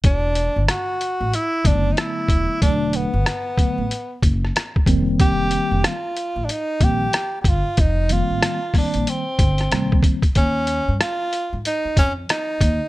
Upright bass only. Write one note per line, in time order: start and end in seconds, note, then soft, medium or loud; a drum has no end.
0.04 0.46 E1 medium
0.56 0.66 G1 medium
1.21 1.31 A1 medium
1.65 1.91 F#1 medium
2.29 2.45 E1 medium
2.62 3.04 E1 medium
3.14 3.24 G1 medium
3.78 3.88 A1 medium
4.23 4.49 F#1 medium
4.86 5.56 F1 medium
5.71 5.82 F1 medium
6.36 6.46 A1 medium
6.81 7.07 A#1 medium
7.44 7.61 G1 medium
7.78 8.20 F1 medium
8.30 8.40 A1 medium
8.95 9.05 A#1 medium
9.39 9.65 G1 medium
9.72 9.98 C2 medium
10.36 10.78 D#2 medium
10.88 10.98 G2 medium
11.53 11.63 G#2 medium
11.85 muted upright bass stroke soft
11.97 12.23 F2 medium
12.61 12.77 D#2 medium